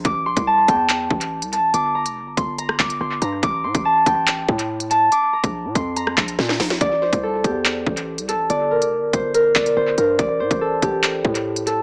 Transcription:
<<
  \new Staff \with { instrumentName = "Harp" } { \time 4/4 \key a \phrygian \tempo 4 = 142 d'''8 c'''8 a''8 g''2 a''8 | d'''8 bes''4 c'''8 bes''8 d'''8 c'''8 bes''8 | d'''8 c'''8 a''8 g''2 a''8 | d'''8 bes''4 c'''8 bes''8 bes''4. |
d''8 c''8 a'8 g'2 a'8 | d''8 bes'4 c''8 bes'8 d''8 c''8 bes'8 | d''8 c''8 a'8 g'2 a'8 | }
  \new Staff \with { instrumentName = "808-style bass" } { \clef bass \time 4/4 \key a \phrygian a,,8 bes,,16 c,8. e,4 a,,8. c,16. a,,16. | g,,8. f,,16. g,,16. g,,4 g,,8 g,,8 g,8 | a,,8 a,16 a,,8. a,,4 a,4. | r8. bes,,8 bes,16 f,4 bes,,8 bes,8 bes,,8 |
a,,8 bes,,16 c,8. e,4 a,,8. c,16. a,,16. | g,,8. f,,16. g,,16. g,,4 g,,8 g,,8 g,8 | a,,8 a,16 a,,8. a,,4 a,4. | }
  \new DrumStaff \with { instrumentName = "Drums" } \drummode { \time 4/4 <hh bd>8. <hh bd>16 r8 <hh bd>8 <hc hh>8 bd16 hh16 r16 hh16 hh8 | hh8. hh16 r8 <hh bd>8 hh16 ss16 <hc bd>16 hh16 r8 hh8 | <hh bd>8. <hh bd>16 r8 <hh bd>8 <hc hh>8 bd16 hh16 r16 hh16 hh8 | hh8. <hh bd>16 r8 <hh bd>8 hh16 ss16 <hc bd>16 hh16 sn16 sn16 <hho sn>16 sn16 |
<hh bd>8. <hh bd>16 r8 <hh bd>8 <hc hh>8 bd16 hh16 r16 hh16 hh8 | hh8. hh16 r8 <hh bd>8 hh8 <hc bd>16 hh16 r8 hh8 | <hh bd>8. <hh bd>16 r8 <hh bd>8 <hc hh>8 bd16 hh16 r16 hh16 hh8 | }
>>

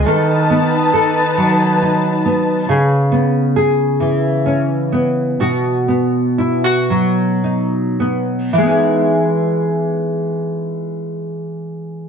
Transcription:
<<
  \new Staff \with { instrumentName = "String section" } { \time 6/8 \key e \major \tempo 4. = 42 <dis' b' a''>2. | r2. | r2. | r2. | }
  \new Staff \with { instrumentName = "Nylon-string guitar" } { \time 6/8 \key e \major <dis a'>8 b8 a'8 fis8 dis'8 b8 | <cis gis'>8 b8 gis'8 e8 cis'8 b8 | <b, fis'>8 b8 e'16 fis'16 fis8 dis'8 b8 | <e gis b dis' gis'>2. | }
>>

